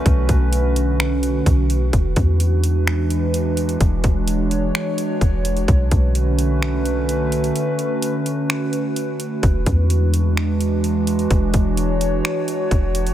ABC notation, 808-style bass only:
X:1
M:4/4
L:1/8
Q:1/4=128
K:Emix
V:1 name="808-style bass" clef=bass
B,,, B,,,4- B,,, B,,,2 | E,,, E,,6- E,, | E,,, E,,,3 z2 E,,,2 | B,,, B,,,6- B,,, |
z8 | E,,, E,,6- E,, | E,,, E,,,3 z2 E,,,2 |]